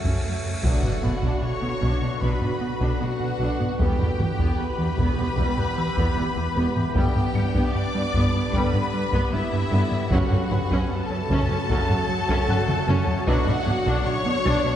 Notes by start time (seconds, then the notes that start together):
Already playing: C#3 F#3 A3 F#4 A4 C#5 F#5 A5, cymbal swell
0.04 F#2 C#4, taiko
0.24 F#2 A3
0.44 F#2 F#3
0.63 B1 B2 D3 F#3 B3 D4 F#4 B4 F#5, taiko, impact
0.83 B2 D4, taiko low-mid
1.03 B1 B2 B3 D4 B5, taiko low-mid
1.22 B2 D4, taiko
1.42 B2 C#5 C#6
1.62 B2 B3 D4
1.82 B1 B2 D4, taiko
2.02 B2 D4
2.21 B1 B2 D3 F#3 B3 D4 B4 B5, taiko
2.42 B2 D4, taiko low-mid
2.61 B3
2.81 B2 D4, taiko
3.00 B1 B2 B3 D4 F#4 F#5
3.21 B2 D4
3.40 B1 B2 D4
3.60 B3, taiko low-mid
3.79 E1 E2 E3 G3 B3 G4 B4 G5, taiko
3.99 E2 B3, taiko low-mid
4.19 E1 E2 E3 B3, taiko low-mid
4.39 E2 B3, taiko
4.58 E2 B4 B5
4.79 E2 E3 B3
4.98 E1 E2 B3, taiko
5.18 E2 B3
5.36 E1 E2 E3 G3 B3 B4, taiko
5.58 E2 B3, taiko low-mid
5.78 E3 E6
5.97 E2 B3, taiko
6.17 E1 E2 E3 B3
6.37 E2 B3
6.56 E1 E2 B3
6.76 E3, taiko low-mid
6.94 G1 G2 D3 G3 B3 D4 G4 B4 G5, taiko
7.15 G2 B3, taiko low-mid
7.35 G1 G2 G3 B3 C#7, taiko low-mid
7.54 G2 B3, taiko
7.74 G2 D5 D6
7.95 G2 G3 B3
8.14 G1 G2 B3, taiko
8.34 G2 B3
8.53 G1 G2 D3 G3 B3 B4 B5, taiko
8.73 G2 B3, taiko low-mid
8.94 G3
9.13 G2 B3, taiko
9.32 G1 G2 G3 B3 E4 E5
9.52 G2 B3
9.72 G1 G2 B3
9.92 G3, taiko low-mid
10.11 F#1 F#2 C#3 F#3 A3 C#4 F#4 A4 C#5 F#5, taiko
10.31 F#2 C#4, taiko low-mid
10.51 F#1 F#2 F#3 C#4 B4 B5, taiko low-mid
10.71 F#2 C#4, taiko
10.90 F#2 A4 A5
11.10 F#2 F#3 C#4
11.30 F#1 F#2 C#4, taiko
11.50 F#2 C#4
11.69 F#1 F#2 C#3 F#3 C#4 A4, taiko
11.89 F#2 C#4, taiko low-mid
12.09 F#3
12.29 F#2 C#4, taiko
12.49 F#1 F#2 F#3 C#4 F#5 F#6, taiko low-mid
12.68 F#2 C#4, taiko mid
12.87 F#1 F#2 C#4, taiko mid
13.07 F#3, taiko low
13.27 B1 B2 D3 F#3 B3 D4 F#4 B4 F#5, taiko
13.47 B2 D4, taiko low-mid
13.66 B1 B2 B3 D4, taiko low-mid
13.86 B2 D4, taiko
14.06 B2 C#5 C#6
14.26 B2 B3 D4
14.45 B1 B2 D4 A6, taiko
14.65 B2 D4